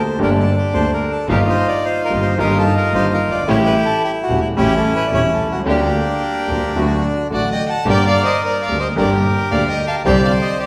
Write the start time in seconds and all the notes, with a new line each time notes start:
Already playing: D2 D3 A3 A#3 G4 A4 C5
0.19 G1 G2 D3 A3 A#3 D4 G4 A4 A#4
0.40 A4
0.57 G4
0.73 D2 D3 A3 A#3 G4 A4 C5
0.94 A#4
1.11 A4
1.28 G1 G2 D#3 G3 A#3 D#4 F4 G4 A#4
1.50 C5
1.68 D5
1.85 C5
2.05 A#4
2.10 G1 G2 D#3 G3 A#3 D#4 F4 G4
2.22 C5
2.38 G1 G2 D#3 G3 A#3 D#4 F4 G4 A#4
2.58 A4
2.77 A#4
2.93 G1 G2 D#3 G3 A#3 D#4 F4 G4 C5
3.14 A#4
3.20 G1
3.28 F#1 D5
3.35 G1
3.42 G#1
3.47 A1 A2 C#3 G3 A3 C#4 E4 G4 C#5
3.66 B4
3.85 A4
4.04 G4
4.23 F#4
4.29 E1 E2 C#3 G3 A3 C#4 E4 G4
4.40 E4
4.56 A1 A2 C#3 G3 A3 C#4 E4 G4
4.77 A4
4.96 B4
5.07 D5
5.12 E1 E2 C#3 G3 A3 C#4 E4 G4 C#5
5.33 A4
5.38 C2
5.46 B1
5.52 C2 F#4
5.60 C#2
5.66 D2 D3 G3 A#3 D4 G4
6.48 D2 D3 G3 A#3 D4 G4
6.76 D2 D3 F#3 A3 D4 F#4
7.30 A1 A2 D3 F#3 A3 D4 F#4 D5 F#5
7.52 D#5 G5
7.69 F#5 A5
7.85 G1 G2 D3 G3 A#3 D4 G4
7.89 A#4 D5 G5
8.07 D5 F5
8.24 C5 D#5
8.45 A#4 D5
8.62 D5 F5
8.69 D2 D3 G3 A#3 D4 G4
8.79 C5 D#5
8.96 G1 G2 D3 G3 A#3 D4 G4 A#4 D5
9.51 D2 D3 G3 A#3 D4 G4 D5 F5
9.69 D#5 G5
9.87 F5 A5
10.05 C2 C3 D3 G3 C4 D4 G4 C5 D5 G5
10.24 D5 F5
10.42 C5 D#5
10.60 G4 D5